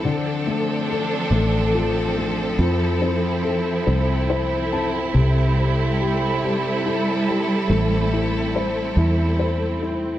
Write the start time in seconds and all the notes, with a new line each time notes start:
Already playing: C4 A4
0.04 D2 D3 F3 D4
0.47 A3
0.90 A4
1.31 A1 A3
1.75 F4
2.17 A3
2.59 F2 F3 E4
3.02 C4
3.44 A4
3.87 C2 C4
4.30 E4 C5
4.73 C4 A5
5.14 C2 C3 G3 A4
5.57 G3
6.00 G4
6.42 G1 G3
6.86 E4
7.28 G3
7.70 A1 A3
8.13 E4
8.56 C5
8.97 E2 E4
9.40 C5
9.82 E4